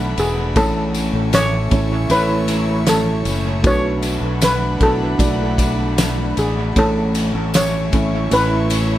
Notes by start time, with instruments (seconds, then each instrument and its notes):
Already playing: fingered electric bass B1, steel-string acoustic guitar B2 A3 D4 F#4, felt piano A3 D4 F#4 B4, analog synth pad A3 D4 F#5 B5
0.18 fingered electric bass E1, steel-string acoustic guitar D4, steel pan G#4, ride, tambourine
0.55 fingered electric bass A1, steel-string acoustic guitar A2 A4, felt piano A2 A3 C#4 E4 C#5, steel pan A4, analog synth pad C#5 E5 C#6, kick, ride, tambourine
0.94 steel-string acoustic guitar C#4, ride, tambourine
1.13 fingered electric bass A1
1.33 steel-string acoustic guitar A3, steel pan C#5, snare, ride, tambourine
1.70 fingered electric bass A1, felt piano A3 C#4 E4 C#5, steel-string acoustic guitar C#4, kick, ride, tambourine
2.09 fingered electric bass A1, felt piano A3 C#4 E4 C#5, steel-string acoustic guitar A3, steel pan B4, ride, tambourine
2.48 steel-string acoustic guitar C#4, ride, tambourine
2.86 steel-string acoustic guitar A3, steel pan A4, snare, ride, tambourine
3.25 fingered electric bass F#1, steel-string acoustic guitar C#4, ride, tambourine
3.63 fingered electric bass B1, steel-string acoustic guitar B2 F#4, felt piano B2 A3 D4 F#4 B4, analog synth pad D4 F#5 B5, steel pan C#5, kick, ride, tambourine
4.02 steel-string acoustic guitar D4, ride, tambourine
4.21 fingered electric bass B1
4.41 steel-string acoustic guitar A3, steel pan B4, snare, ride, tambourine
4.80 fingered electric bass B1, felt piano A3 D4 F#4 A4, steel-string acoustic guitar D4, steel pan A4, kick, ride
5.18 fingered electric bass B1, felt piano A3 D4 F#4 D5, steel-string acoustic guitar A3, kick, ride, tambourine
5.58 steel-string acoustic guitar D4, kick, ride, tambourine
5.98 steel-string acoustic guitar A3, snare, ride, tambourine
6.37 fingered electric bass A1, steel-string acoustic guitar D4, steel pan G#4, ride, tambourine
6.75 fingered electric bass A1, steel-string acoustic guitar A2 A4, felt piano A2 A3 C#4 E4 C#5, steel pan A4, analog synth pad C#5 E5 C#6, kick, ride
7.15 steel-string acoustic guitar C#4, ride, tambourine
7.35 fingered electric bass A1
7.54 steel-string acoustic guitar A3, steel pan C#5, snare, ride, tambourine
7.92 fingered electric bass A1, felt piano A3 C#4 E4 E5, steel-string acoustic guitar C#4, kick, ride, tambourine
8.30 fingered electric bass A1, felt piano A3 C#4 E4 C#5, steel-string acoustic guitar A3, steel pan B4, ride, tambourine
8.70 steel-string acoustic guitar C#4, ride, tambourine